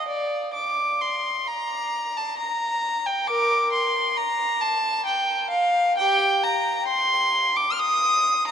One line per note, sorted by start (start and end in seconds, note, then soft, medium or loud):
0.08 0.53 D5 medium
0.54 0.99 D6 medium
1.01 1.46 C6 medium
1.48 2.16 A#5 medium
2.17 2.38 A5 medium
2.38 3.03 A#5 medium
3.06 3.27 G5 medium
3.27 3.68 A#4 medium
3.27 3.71 D6 loud
3.73 4.16 C6 medium
4.18 4.62 A#5 medium
4.61 5.06 A5 medium
5.06 5.50 G5 medium
5.50 5.95 F5 medium
5.98 6.40 G4 medium
5.98 6.42 G5 loud
6.43 6.88 A#5 medium
6.88 7.54 C6 loud
7.56 7.72 D6 medium
7.72 7.79 F6 medium
7.79 8.47 D#6 loud
8.48 8.51 A#5 medium